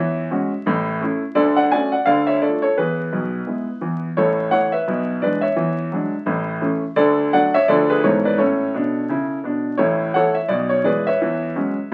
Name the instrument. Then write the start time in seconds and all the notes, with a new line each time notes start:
grand piano
Already playing: E2 E3 C#5 E5
0.31 G#3 C#4 F#4
0.66 A1 A2
1.01 A3 C#4 E4
1.35 D2 D3 A4 D5
1.56 D5 F#5
1.72 A3 C#4 F#4 D5 G#5
1.92 D5 F#5
2.06 D2 D3 D5 F5
2.27 C#5 E5
2.41 A3 D4 F4 A4 D5
2.62 A4 C#5
2.78 E2 E3 G#4 B4
3.12 B1 B2
3.47 G#3 B3 E4
3.81 E2 E3
4.17 A1 A2 A4 C#5
4.51 E3 A3 E4 C#5 F#5
4.72 B4 E5
4.88 B1 B2
5.22 E3 G#3 D4 B4 D5
5.41 C#5 E5
5.56 E2 E3
5.92 F#3 G#3 D4
6.26 A1 A2
6.62 E3 A3 C#4
6.96 D2 D3 A4 D5
7.33 F#3 A3 D4 D5 F#5
7.54 C#5 E5
7.68 D2 D3 F3 A3 D4 A4 D5
7.90 G#4 B4
8.03 G#1 G#2 E3 B3 E4 A4 C#5
8.25 B4 D5
8.38 A2 C#4 A4 C#5
8.74 B2 D4
9.09 C#3 E4
9.44 B2 D4
9.78 A1 A2 E4 A4 C#5
10.14 E3 A3 E4 A4 C#5 F#5
10.35 E5
10.48 B1 B2 D5
10.69 C#5
10.84 E3 G#3 E4 G#4 B4 D5
11.07 B4 C#5 E5
11.21 E2 E3
11.56 F#3 G#3 C#4